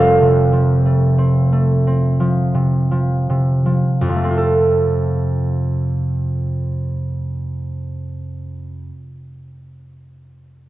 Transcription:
0, 0, Header, 1, 2, 480
1, 0, Start_track
1, 0, Key_signature, -1, "major"
1, 0, Tempo, 1312910
1, 429, Tempo, 1376147
1, 909, Tempo, 1438849
1, 1392, Time_signature, 6, 3, 24, 8
1, 2349, Tempo, 1415094
1, 3647, End_track
2, 0, Start_track
2, 0, Title_t, "Harp"
2, 0, Program_c, 0, 46
2, 0, Note_on_c, 0, 29, 75
2, 0, Note_on_c, 0, 41, 75
2, 0, Note_on_c, 0, 60, 57
2, 0, Note_on_c, 0, 69, 77
2, 0, Note_on_c, 0, 72, 76
2, 0, Note_on_c, 0, 77, 92
2, 77, Note_on_c, 0, 48, 59
2, 192, Note_on_c, 0, 53, 58
2, 313, Note_on_c, 0, 57, 52
2, 428, Note_off_c, 0, 60, 0
2, 432, Note_on_c, 0, 60, 65
2, 547, Note_off_c, 0, 57, 0
2, 551, Note_on_c, 0, 57, 54
2, 667, Note_off_c, 0, 60, 0
2, 672, Note_on_c, 0, 60, 60
2, 783, Note_off_c, 0, 53, 0
2, 787, Note_on_c, 0, 53, 59
2, 903, Note_off_c, 0, 48, 0
2, 907, Note_on_c, 0, 48, 58
2, 1026, Note_off_c, 0, 53, 0
2, 1030, Note_on_c, 0, 53, 56
2, 1154, Note_off_c, 0, 48, 0
2, 1158, Note_on_c, 0, 48, 53
2, 1274, Note_off_c, 0, 53, 0
2, 1278, Note_on_c, 0, 53, 56
2, 1317, Note_off_c, 0, 29, 0
2, 1320, Note_off_c, 0, 77, 0
2, 1321, Note_off_c, 0, 41, 0
2, 1323, Note_off_c, 0, 72, 0
2, 1325, Note_off_c, 0, 69, 0
2, 1396, Note_on_c, 0, 41, 74
2, 1412, Note_off_c, 0, 48, 0
2, 1422, Note_on_c, 0, 48, 68
2, 1441, Note_off_c, 0, 57, 0
2, 1445, Note_on_c, 0, 57, 65
2, 1468, Note_off_c, 0, 60, 0
2, 1472, Note_on_c, 0, 60, 59
2, 1494, Note_on_c, 0, 65, 61
2, 1517, Note_on_c, 0, 69, 64
2, 2583, Note_off_c, 0, 53, 0
2, 3031, Note_off_c, 0, 41, 0
2, 3057, Note_off_c, 0, 48, 0
2, 3081, Note_off_c, 0, 57, 0
2, 3108, Note_off_c, 0, 60, 0
2, 3131, Note_off_c, 0, 65, 0
2, 3154, Note_off_c, 0, 69, 0
2, 3647, End_track
0, 0, End_of_file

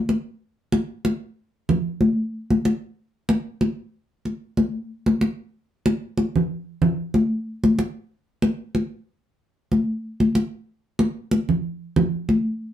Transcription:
0, 0, Header, 1, 2, 480
1, 0, Start_track
1, 0, Tempo, 642398
1, 63, Time_signature, 4, 2, 24, 8
1, 9516, End_track
2, 0, Start_track
2, 0, Title_t, "Drums"
2, 67, Note_on_c, 9, 62, 51
2, 141, Note_off_c, 9, 62, 0
2, 541, Note_on_c, 9, 63, 66
2, 615, Note_off_c, 9, 63, 0
2, 783, Note_on_c, 9, 62, 55
2, 857, Note_off_c, 9, 62, 0
2, 1262, Note_on_c, 9, 62, 32
2, 1262, Note_on_c, 9, 64, 72
2, 1337, Note_off_c, 9, 62, 0
2, 1337, Note_off_c, 9, 64, 0
2, 1499, Note_on_c, 9, 63, 67
2, 1574, Note_off_c, 9, 63, 0
2, 1872, Note_on_c, 9, 63, 78
2, 1946, Note_off_c, 9, 63, 0
2, 1982, Note_on_c, 9, 62, 56
2, 2057, Note_off_c, 9, 62, 0
2, 2457, Note_on_c, 9, 63, 75
2, 2532, Note_off_c, 9, 63, 0
2, 2697, Note_on_c, 9, 62, 56
2, 2772, Note_off_c, 9, 62, 0
2, 3178, Note_on_c, 9, 62, 36
2, 3253, Note_off_c, 9, 62, 0
2, 3417, Note_on_c, 9, 63, 73
2, 3491, Note_off_c, 9, 63, 0
2, 3783, Note_on_c, 9, 63, 77
2, 3858, Note_off_c, 9, 63, 0
2, 3895, Note_on_c, 9, 62, 56
2, 3970, Note_off_c, 9, 62, 0
2, 4377, Note_on_c, 9, 63, 69
2, 4451, Note_off_c, 9, 63, 0
2, 4614, Note_on_c, 9, 62, 55
2, 4689, Note_off_c, 9, 62, 0
2, 4749, Note_on_c, 9, 64, 64
2, 4823, Note_off_c, 9, 64, 0
2, 5093, Note_on_c, 9, 64, 82
2, 5168, Note_off_c, 9, 64, 0
2, 5336, Note_on_c, 9, 63, 72
2, 5411, Note_off_c, 9, 63, 0
2, 5705, Note_on_c, 9, 63, 81
2, 5780, Note_off_c, 9, 63, 0
2, 5818, Note_on_c, 9, 62, 55
2, 5893, Note_off_c, 9, 62, 0
2, 6294, Note_on_c, 9, 63, 67
2, 6368, Note_off_c, 9, 63, 0
2, 6536, Note_on_c, 9, 62, 52
2, 6611, Note_off_c, 9, 62, 0
2, 7260, Note_on_c, 9, 63, 69
2, 7334, Note_off_c, 9, 63, 0
2, 7623, Note_on_c, 9, 63, 74
2, 7698, Note_off_c, 9, 63, 0
2, 7735, Note_on_c, 9, 62, 59
2, 7810, Note_off_c, 9, 62, 0
2, 8212, Note_on_c, 9, 63, 70
2, 8287, Note_off_c, 9, 63, 0
2, 8454, Note_on_c, 9, 62, 59
2, 8529, Note_off_c, 9, 62, 0
2, 8584, Note_on_c, 9, 64, 62
2, 8659, Note_off_c, 9, 64, 0
2, 8939, Note_on_c, 9, 62, 37
2, 8939, Note_on_c, 9, 64, 83
2, 9014, Note_off_c, 9, 62, 0
2, 9014, Note_off_c, 9, 64, 0
2, 9181, Note_on_c, 9, 63, 70
2, 9256, Note_off_c, 9, 63, 0
2, 9516, End_track
0, 0, End_of_file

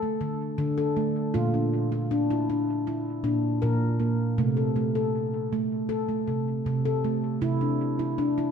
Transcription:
0, 0, Header, 1, 2, 480
1, 0, Start_track
1, 0, Tempo, 758534
1, 854, Time_signature, 4, 2, 24, 8
1, 5387, End_track
2, 0, Start_track
2, 0, Title_t, "Handpan"
2, 0, Program_c, 0, 114
2, 16, Note_on_c, 0, 57, 60
2, 131, Note_on_c, 0, 50, 75
2, 246, Note_off_c, 0, 50, 0
2, 256, Note_off_c, 0, 57, 0
2, 368, Note_on_c, 0, 50, 94
2, 491, Note_on_c, 0, 69, 66
2, 611, Note_on_c, 0, 57, 74
2, 612, Note_off_c, 0, 69, 0
2, 826, Note_off_c, 0, 50, 0
2, 848, Note_on_c, 0, 65, 85
2, 853, Note_off_c, 0, 57, 0
2, 854, Note_on_c, 0, 46, 90
2, 973, Note_off_c, 0, 65, 0
2, 974, Note_on_c, 0, 62, 51
2, 1078, Note_off_c, 0, 46, 0
2, 1214, Note_on_c, 0, 65, 61
2, 1215, Note_off_c, 0, 62, 0
2, 1333, Note_off_c, 0, 65, 0
2, 1335, Note_on_c, 0, 62, 73
2, 1457, Note_off_c, 0, 62, 0
2, 1459, Note_on_c, 0, 64, 70
2, 1575, Note_off_c, 0, 64, 0
2, 1579, Note_on_c, 0, 62, 65
2, 1817, Note_off_c, 0, 62, 0
2, 1817, Note_on_c, 0, 64, 61
2, 2049, Note_on_c, 0, 46, 80
2, 2049, Note_on_c, 0, 62, 72
2, 2056, Note_off_c, 0, 64, 0
2, 2165, Note_off_c, 0, 46, 0
2, 2289, Note_on_c, 0, 70, 59
2, 2292, Note_off_c, 0, 62, 0
2, 2294, Note_on_c, 0, 46, 91
2, 2529, Note_on_c, 0, 58, 63
2, 2532, Note_off_c, 0, 70, 0
2, 2749, Note_off_c, 0, 46, 0
2, 2772, Note_off_c, 0, 58, 0
2, 2773, Note_on_c, 0, 48, 89
2, 2773, Note_on_c, 0, 57, 74
2, 2891, Note_on_c, 0, 69, 50
2, 2896, Note_off_c, 0, 57, 0
2, 2998, Note_off_c, 0, 48, 0
2, 3011, Note_on_c, 0, 57, 74
2, 3012, Note_off_c, 0, 69, 0
2, 3135, Note_off_c, 0, 57, 0
2, 3135, Note_on_c, 0, 69, 58
2, 3376, Note_off_c, 0, 69, 0
2, 3497, Note_on_c, 0, 57, 72
2, 3727, Note_on_c, 0, 69, 69
2, 3736, Note_off_c, 0, 57, 0
2, 3851, Note_on_c, 0, 57, 60
2, 3853, Note_off_c, 0, 69, 0
2, 3971, Note_on_c, 0, 48, 72
2, 4087, Note_off_c, 0, 48, 0
2, 4094, Note_off_c, 0, 57, 0
2, 4216, Note_on_c, 0, 48, 89
2, 4337, Note_on_c, 0, 69, 63
2, 4456, Note_off_c, 0, 69, 0
2, 4457, Note_on_c, 0, 57, 68
2, 4671, Note_off_c, 0, 48, 0
2, 4692, Note_on_c, 0, 48, 84
2, 4695, Note_on_c, 0, 64, 81
2, 4697, Note_off_c, 0, 57, 0
2, 4817, Note_off_c, 0, 64, 0
2, 4817, Note_on_c, 0, 62, 55
2, 4918, Note_off_c, 0, 48, 0
2, 5057, Note_off_c, 0, 62, 0
2, 5058, Note_on_c, 0, 64, 62
2, 5176, Note_off_c, 0, 64, 0
2, 5178, Note_on_c, 0, 62, 77
2, 5299, Note_off_c, 0, 62, 0
2, 5301, Note_on_c, 0, 64, 70
2, 5387, Note_off_c, 0, 64, 0
2, 5387, End_track
0, 0, End_of_file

